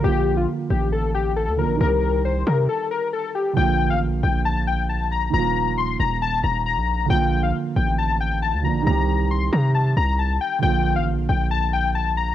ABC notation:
X:1
M:4/4
L:1/16
Q:1/4=136
K:Bb
V:1 name="Synth keys"
G3 F z2 G2 A2 G2 A2 B2 | B4 c2 B2 A2 B2 A2 G2 | g3 f z2 g2 a2 g2 a2 b2 | b4 c'2 b2 a2 b2 b4 |
g3 f z2 g2 a2 g2 a2 b2 | b4 c'2 b2 a2 b2 a2 g2 | g3 f z2 g2 a2 g2 a2 b2 |]
V:2 name="Grand piano" clef=bass
[D,F,B,F]12- [D,F,B,F]2 [D,F,B,D]2 | [E,G,CG]16 | [D,F,B,F]16 | [E,F,B,F]16 |
[D,F,B,F]12- [D,F,B,F]2 [D,F,B,D]2 | [E,G,CG]16 | [D,F,B,F]16 |]
V:3 name="808-style bass" clef=bass
B,,,4 z2 A,,,6- A,,, D,,3/2 A,,,3/2 | C,,6 C,2 z8 | B,,,3 A,,,3/2 B,,,3/2 B,,,8- B,,,2 | E,,,6 E,,,4 E,,,3 B,,,3 |
B,,,4 z2 A,,,6- A,,, D,,3/2 A,,,3/2 | C,,6 C,4 C,,4 z2 | B,,,3 A,,,3/2 B,,,3/2 B,,,8- B,,,2 |]